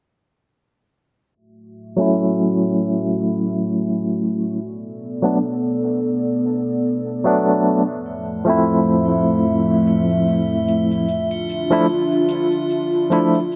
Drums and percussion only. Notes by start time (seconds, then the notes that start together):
7.84 shaker
8.06 triangle
8.25 shaker
8.47 shaker
8.65 shaker
8.87 shaker
9.05 triangle, shaker
9.28 shaker
9.46 shaker
9.68 shaker
9.86 triangle, shaker
10.09 shaker
10.27 shaker
10.68 shaker
10.91 shaker
11.08 shaker
11.31 triangle, shaker
11.49 shaker
11.71 shaker
11.89 shaker
12.11 shaker
12.29 triangle, shaker
12.51 shaker
12.69 shaker
12.92 shaker
13.11 shaker
13.34 shaker
13.52 shaker